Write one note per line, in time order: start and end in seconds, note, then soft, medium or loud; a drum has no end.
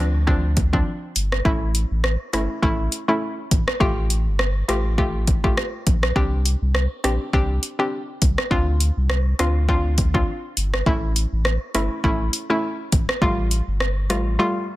0.00 0.82 D2 medium
0.00 0.21 F3 medium
0.00 0.21 C4 medium
0.00 0.21 D4 medium
0.27 0.69 F3 medium
0.27 0.69 C4 medium
0.27 0.70 D4 loud
0.27 kick medium
0.57 kick loud
0.57 closed hi-hat medium
0.73 0.94 F3 medium
0.73 0.94 C4 medium
0.73 0.95 D4 medium
0.73 kick medium
1.16 1.41 G1 medium
1.16 closed hi-hat medium
1.32 cross-stick medium
1.45 1.85 A1 loud
1.45 2.00 A3 medium
1.45 2.00 C#4 medium
1.45 2.00 E4 loud
1.45 kick loud
1.75 closed hi-hat medium
1.91 2.17 A1 loud
2.04 cross-stick medium
2.33 2.48 G1 medium
2.33 2.56 A3 medium
2.33 2.56 C#4 medium
2.33 2.56 E4 medium
2.33 cross-stick medium
2.33 closed hi-hat medium
2.62 2.88 A1 loud
2.62 3.05 A3 loud
2.62 3.05 C#4 medium
2.62 3.05 E4 loud
2.62 kick medium
2.92 closed hi-hat medium
3.08 3.30 A3 medium
3.08 3.30 C#4 medium
3.08 3.30 E4 medium
3.51 3.66 A1 medium
3.51 kick medium
3.51 closed hi-hat medium
3.68 cross-stick medium
3.80 4.28 A1 loud
3.80 4.35 A3 loud
3.80 4.35 F4 medium
3.80 4.35 G4 loud
3.80 kick loud
4.10 closed hi-hat medium
4.27 4.63 G1 loud
4.39 cross-stick medium
4.68 5.53 A1 medium
4.68 4.91 A3 medium
4.68 4.92 F4 medium
4.68 4.92 G4 medium
4.68 cross-stick medium
4.68 closed hi-hat medium
4.98 5.40 A3 medium
4.98 5.40 F4 medium
4.98 5.40 G4 loud
4.98 kick medium
5.27 kick medium
5.27 closed hi-hat medium
5.44 5.65 A3 medium
5.44 5.65 F4 medium
5.44 5.65 G4 medium
5.44 kick medium
5.57 cross-stick loud
5.87 6.12 A#1 medium
5.87 kick medium
5.87 closed hi-hat medium
6.03 cross-stick medium
6.16 6.56 C2 loud
6.16 6.70 C4 loud
6.16 6.71 D4 medium
6.16 6.71 G4 loud
6.16 kick loud
6.46 closed hi-hat medium
6.62 6.87 C2 medium
6.75 cross-stick medium
7.04 7.18 A#1 loud
7.04 7.27 C4 medium
7.04 7.27 D4 medium
7.04 7.27 G4 medium
7.04 cross-stick medium
7.04 closed hi-hat medium
7.33 7.59 C2 loud
7.33 7.75 C4 medium
7.33 7.75 D4 medium
7.33 7.76 G4 loud
7.33 kick medium
7.63 closed hi-hat medium
7.79 8.00 C4 medium
7.79 8.00 D4 medium
7.79 8.00 G4 medium
8.22 8.36 C2 medium
8.22 kick medium
8.22 closed hi-hat medium
8.38 cross-stick medium
8.51 8.91 D2 loud
8.51 9.06 C4 medium
8.51 9.06 D4 medium
8.51 9.06 F4 loud
8.51 kick loud
8.80 closed hi-hat medium
8.97 9.34 C2 medium
9.10 cross-stick medium
9.39 10.24 D2 medium
9.39 9.62 C4 medium
9.39 9.62 D4 medium
9.39 9.62 F4 medium
9.39 cross-stick medium
9.39 closed hi-hat medium
9.69 10.11 C4 medium
9.69 10.11 D4 medium
9.69 10.11 F4 loud
9.69 kick medium
9.98 kick medium
9.98 closed hi-hat medium
10.14 10.35 C4 medium
10.14 10.36 D4 medium
10.14 10.36 F4 medium
10.14 kick medium
10.57 10.82 G1 medium
10.57 closed hi-hat medium
10.74 cross-stick medium
10.86 11.26 A1 loud
10.86 11.41 A3 medium
10.86 11.41 C#4 medium
10.86 11.41 E4 loud
10.86 kick loud
11.16 closed hi-hat medium
11.32 11.58 A1 loud
11.45 cross-stick medium
11.75 11.89 G1 medium
11.75 11.97 A3 medium
11.75 11.98 C#4 medium
11.75 11.98 E4 medium
11.75 cross-stick medium
11.75 closed hi-hat medium
12.04 12.29 A1 loud
12.04 12.46 A3 medium
12.04 12.46 C#4 medium
12.04 12.46 E4 loud
12.04 kick medium
12.33 closed hi-hat medium
12.50 12.71 A3 medium
12.50 12.71 C#4 medium
12.50 12.71 E4 medium
12.92 13.07 A1 medium
12.92 kick loud
12.92 closed hi-hat medium
13.09 cross-stick medium
13.22 13.61 A1 loud
13.22 13.76 G3 medium
13.22 13.77 A3 medium
13.22 13.77 F4 loud
13.22 kick loud
13.51 closed hi-hat medium
13.68 14.11 G1 medium
13.80 cross-stick medium
14.10 14.38 A1 medium
14.10 14.33 G3 medium
14.10 14.33 A3 medium
14.10 14.33 F4 medium
14.10 cross-stick medium
14.10 closed hi-hat medium
14.39 14.76 G3 medium
14.39 14.76 A3 medium
14.39 14.76 F4 loud